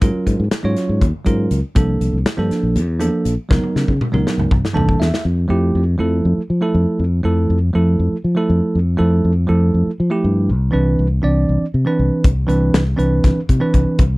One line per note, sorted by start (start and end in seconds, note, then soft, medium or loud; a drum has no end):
0.01 0.12 G#2 medium
0.01 0.42 F#3 medium
0.01 0.43 C#4 medium
0.01 0.43 F4 medium
0.01 0.43 A#4 medium
0.01 kick loud
0.01 closed hi-hat medium
0.15 muted fingered electric bass stroke soft
0.27 0.37 G#2 medium
0.27 kick medium
0.27 closed hi-hat medium
0.40 0.49 G#2 medium
0.51 muted fingered electric bass stroke soft
0.51 snare medium
0.51 closed hi-hat medium
0.63 0.74 G#2 medium
0.63 1.04 F#3 medium
0.63 1.05 C#4 medium
0.63 1.05 F4 medium
0.63 1.05 C#5 medium
0.77 snare soft
0.77 closed hi-hat medium
0.89 0.99 G#2 medium
1.01 1.11 D#2 medium
1.01 kick medium
1.01 closed hi-hat medium
1.25 1.47 G#2 medium
1.25 1.58 F#3 medium
1.25 1.59 C#4 medium
1.25 1.59 F4 medium
1.25 1.59 A#4 medium
1.25 kick medium
1.25 closed hi-hat medium
1.51 1.61 C#2 medium
1.51 closed hi-hat medium
1.75 1.96 C2 medium
1.75 2.17 F3 medium
1.75 2.17 A#3 medium
1.75 2.17 D4 medium
1.75 2.17 A4 medium
1.75 kick loud
1.75 closed hi-hat medium
2.01 2.11 C2 medium
2.01 closed hi-hat medium
2.13 2.23 C2 medium
2.26 snare loud
2.26 closed hi-hat medium
2.37 2.48 G2 medium
2.37 2.79 F3 medium
2.37 2.79 A#3 medium
2.37 2.79 D4 medium
2.37 2.80 A4 medium
2.51 muted fingered electric bass stroke soft
2.51 snare soft
2.51 closed hi-hat medium
2.63 2.77 A#1 medium
2.76 2.88 F2 loud
2.76 closed hi-hat medium
2.88 3.08 E2 medium
2.99 3.33 F3 medium
2.99 3.33 A#3 medium
2.99 3.33 D4 medium
2.99 3.33 A4 medium
2.99 closed hi-hat medium
3.25 3.36 A#1 medium
3.25 closed hi-hat medium
3.49 3.61 C#2 medium
3.49 3.91 F#3 medium
3.49 3.91 B3 medium
3.49 3.92 D#4 medium
3.49 3.92 A#4 medium
3.49 kick loud
3.49 snare medium
3.63 high tom soft
3.76 3.86 C#3 medium
3.76 snare medium
3.88 3.98 C#3 medium
3.88 kick medium
4.00 muted fingered electric bass stroke soft
4.00 mid tom medium
4.12 4.23 C#2 medium
4.12 4.50 F#3 medium
4.12 4.50 B3 medium
4.12 4.51 D#4 medium
4.12 4.51 A#4 medium
4.12 mid tom medium
4.27 snare medium
4.38 4.48 C#2 medium
4.38 mid tom medium
4.51 4.61 C2 medium
4.51 kick medium
4.51 mid tom medium
4.65 snare medium
4.73 4.96 C2 medium
4.73 5.07 E3 medium
4.73 5.07 A#3 medium
4.73 5.08 D4 medium
4.73 5.08 A4 medium
4.73 4.98 A5 medium
4.73 floor tom medium
4.89 kick medium
5.00 5.10 E2 medium
5.00 5.23 E5 medium
5.00 snare medium
5.14 snare medium
5.25 5.45 F2 medium
5.48 5.70 F2 medium
5.48 5.82 F3 medium
5.48 5.82 A3 medium
5.48 5.83 E4 medium
5.48 5.83 G4 loud
5.75 5.95 F2 medium
5.98 6.20 F2 medium
5.98 6.40 F3 medium
5.98 6.40 A3 medium
5.98 6.41 E4 medium
5.98 6.41 A4 medium
6.25 6.35 F2 medium
6.38 muted fingered electric bass stroke soft
6.50 6.60 F3 medium
6.61 7.03 F3 medium
6.61 7.03 A3 medium
6.61 7.03 E4 medium
6.61 7.03 A4 medium
6.74 6.85 F2 medium
6.99 7.20 F2 medium
7.23 7.45 F2 medium
7.23 7.57 F3 medium
7.23 7.57 A3 medium
7.23 7.57 E4 medium
7.23 7.58 A4 medium
7.50 7.70 F2 medium
7.73 7.95 F2 medium
7.73 8.15 F3 medium
7.73 8.15 A3 medium
7.73 8.16 E4 medium
7.73 8.16 A4 medium
7.99 8.10 F2 medium
8.12 muted fingered electric bass stroke soft
8.24 8.35 F3 medium
8.35 8.77 F3 medium
8.35 8.78 A3 medium
8.35 8.78 E4 medium
8.35 8.78 A4 medium
8.50 8.60 F2 loud
8.75 8.95 F2 medium
8.97 9.20 F2 loud
8.97 9.31 F3 medium
8.97 9.31 A3 medium
8.97 9.32 E4 medium
8.97 9.32 A4 loud
9.25 9.45 F2 medium
9.47 9.70 F2 medium
9.47 9.89 F3 medium
9.47 9.90 A3 medium
9.47 9.90 E4 medium
9.47 9.90 A4 loud
9.74 9.84 F2 medium
9.87 muted fingered electric bass stroke soft
10.00 10.10 F3 medium
10.10 10.48 F3 medium
10.10 10.49 A3 medium
10.10 10.49 E4 medium
10.10 10.49 G4 medium
10.24 10.51 G2 loud
10.49 10.70 C2 medium
10.71 10.94 C2 medium
10.71 11.05 E3 medium
10.71 11.06 C4 medium
10.71 11.06 D4 medium
10.71 11.07 B4 medium
10.99 11.19 C2 medium
11.22 11.44 C2 medium
11.22 11.64 E3 medium
11.22 11.65 C4 medium
11.22 11.65 D4 medium
11.22 11.65 D5 medium
11.49 11.59 C2 medium
11.62 muted fingered electric bass stroke soft
11.74 11.84 C3 medium
11.85 12.27 E3 medium
11.85 12.27 C4 medium
11.85 12.28 D4 medium
11.85 12.28 B4 medium
11.99 12.09 C2 medium
12.24 12.44 C2 medium
12.24 kick loud
12.24 closed hi-hat medium
12.47 12.69 C2 medium
12.47 12.81 E3 medium
12.47 12.81 C4 medium
12.47 12.81 D4 medium
12.47 12.82 B4 medium
12.47 closed hi-hat medium
12.74 12.94 C2 medium
12.74 snare loud
12.74 closed hi-hat medium
12.97 13.19 C2 medium
12.97 13.39 E3 medium
12.97 13.39 C4 medium
12.97 13.39 D4 medium
12.97 13.40 B4 loud
12.97 closed hi-hat medium
13.24 13.34 C2 medium
13.24 kick medium
13.24 snare soft
13.24 closed hi-hat medium
13.36 muted fingered electric bass stroke soft
13.49 13.59 C3 medium
13.49 kick medium
13.49 closed hi-hat medium
13.60 14.02 E3 medium
13.60 14.02 C4 medium
13.60 14.02 D4 medium
13.60 14.02 B4 medium
13.74 13.84 C2 loud
13.74 kick medium
13.74 closed hi-hat medium
13.99 14.18 C2 medium
13.99 kick loud
13.99 closed hi-hat medium